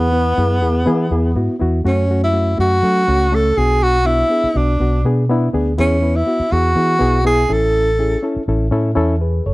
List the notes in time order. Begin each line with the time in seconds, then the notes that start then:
Already playing: E2 B3
0.12 B3 E4 B4
0.37 F#2 B3 E4 G#4
0.61 E2 B3 E4 G#4
0.86 E3 B3 E4 G#4
1.11 E2 B3 E4 G#4
1.35 G#2 B3 E4 F#4
1.60 E2 B3 E4 F#4
1.84 F#2 A3 C#4 F#4
2.09 A3 C#4 F#4
2.24 E4
2.32 A3 C#4 F#4
2.57 F#2 A3 C#4 F#4
2.82 F#3 A3 C#4 A4
3.07 C#2 A3 C#4 F#4
3.32 A3 C#4 A4
3.57 B1 B3 D4 F#4 G#4
3.83 F#4
4.05 B3 D4 E4 F#4
4.29 B3 D4 G#4
4.44 muted fingered electric bass stroke
4.54 B1 B3 D4 F#4
4.80 B1 B3 D4 F#4
5.04 B2 B3 D4 G#4
5.29 B3 D4 E4
5.53 D2 B3 D4 G#4
5.78 E2 B3 C#4 E4 G#4
6.02 B3 E4 B4
6.16 E4
6.26 B3 E4 F#4
6.40 muted fingered electric bass stroke
6.52 E2 B3 E4 F#4 G#4
6.76 E3 B3 E4 G#4
6.99 B1 B3 E4 G#4
7.24 B3 E4 G#4
7.49 A1 C#4 E4 A4
7.99 C#4 E4 G#4
8.22 C#4 E4 A4
8.36 muted fingered electric bass stroke
8.48 A1 C#4 E4 A4
8.71 A2 C#4 E4 A4
8.95 E2 C#4 E4 A4
9.21 G#4 B4
9.46 F#1 A4 C#5